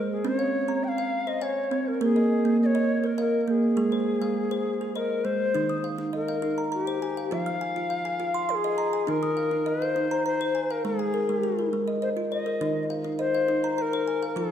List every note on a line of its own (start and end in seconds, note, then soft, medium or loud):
0.00 0.25 G#3 medium
0.00 0.11 A#4 medium
0.00 0.10 D#5 medium
0.12 0.29 G#4 medium
0.25 0.54 C4 medium
0.25 1.98 C#4 medium
0.25 0.85 C#5 medium
0.39 0.83 F5 medium
0.68 0.98 C4 medium
0.68 1.13 A#5 soft
0.84 0.89 G5 medium
0.88 1.29 F5 medium
0.98 1.28 F5 medium
1.27 1.72 C5 medium
1.27 1.44 D#5 medium
1.41 1.89 C#5 medium
1.41 1.72 F5 medium
1.41 1.87 G#5 medium
1.71 2.01 C4 medium
1.88 2.02 A#4 medium
2.01 2.31 A#3 medium
2.01 2.57 G#4 medium
2.01 2.46 A#4 medium
2.16 2.60 D#5 medium
2.45 2.75 A#3 medium
2.63 3.08 C#5 medium
2.63 2.67 D#5 medium
2.75 3.05 D#5 medium
3.04 3.48 A#4 medium
3.04 3.19 A#4 medium
3.18 3.52 A#4 medium
3.18 3.48 D#5 medium
3.18 3.63 F5 medium
3.48 3.78 A#3 medium
3.48 4.95 G#4 medium
3.77 4.07 G#3 medium
3.77 4.22 G#4 medium
3.92 4.37 C5 medium
4.22 4.52 G#3 medium
4.22 4.66 F5 medium
4.51 4.81 C5 medium
4.81 5.25 G#4 medium
4.95 5.26 A#4 medium
4.95 5.25 C5 medium
4.95 5.41 D#5 soft
5.25 5.55 G#3 medium
5.25 5.84 C5 medium
5.55 7.29 D#3 medium
5.55 5.84 D#4 medium
5.69 6.14 D#6 medium
5.84 6.27 F5 medium
5.98 6.29 D#4 medium
6.13 6.69 A#4 medium
6.13 6.58 D#5 medium
6.28 6.73 F5 medium
6.42 6.72 D#4 medium
6.58 6.71 A#5 medium
6.72 7.34 G4 medium
6.72 7.17 A#5 medium
6.87 7.17 C5 medium
7.02 7.47 G#5 medium
7.17 7.47 F5 medium
7.31 9.05 F3 medium
7.31 7.61 F4 medium
7.31 8.52 F5 medium
7.46 7.91 F6 medium
7.61 8.04 G#5 medium
7.76 8.06 F4 medium
7.90 8.35 F5 medium
8.05 8.49 G#5 medium
8.20 8.49 F4 medium
8.34 8.48 C6 medium
8.49 8.56 A#4 medium
8.49 8.94 C6 medium
8.55 9.11 G#4 medium
8.64 8.94 D#5 medium
8.78 9.23 A#5 medium
8.93 9.23 G#5 medium
9.07 10.81 D#3 medium
9.07 9.37 D#4 medium
9.07 9.70 A#4 loud
9.23 9.67 D#6 medium
9.37 9.81 F5 medium
9.51 9.82 D#4 medium
9.66 10.27 C5 medium
9.66 10.11 D#5 medium
9.82 10.26 F5 medium
9.96 10.26 D#4 medium
10.11 10.24 A#5 medium
10.26 10.73 C5 medium
10.26 10.70 A#5 medium
10.41 10.70 C5 medium
10.55 10.98 G#5 medium
10.71 10.85 A#4 medium
10.71 11.00 F5 medium
10.85 11.14 G#3 medium
10.85 11.69 G#4 medium
10.99 11.43 G#5 medium
11.14 11.57 A#4 medium
11.29 11.59 G#3 medium
11.43 11.88 G#4 medium
11.59 12.02 A#4 medium
11.73 12.02 G#3 medium
11.88 12.01 D#5 medium
12.02 12.09 C5 medium
12.02 12.47 D#5 medium
12.17 12.46 F4 medium
12.31 12.76 C5 medium
12.31 12.86 D#5 medium
12.46 12.76 A#4 medium
12.61 14.34 D#3 medium
12.61 12.90 D#4 medium
12.90 13.33 F5 medium
13.04 13.34 D#4 medium
13.19 13.77 C5 medium
13.19 13.64 D#5 medium
13.35 13.78 F5 medium
13.48 13.78 D#4 medium
13.64 13.77 A#5 medium
13.77 13.83 C5 medium
13.77 14.23 A#5 medium
13.82 14.37 A#4 medium
13.93 14.23 C5 medium
14.08 14.51 G#5 medium
14.23 14.51 F5 medium
14.36 14.51 F3 medium
14.36 14.51 F4 medium
14.36 14.51 G#4 medium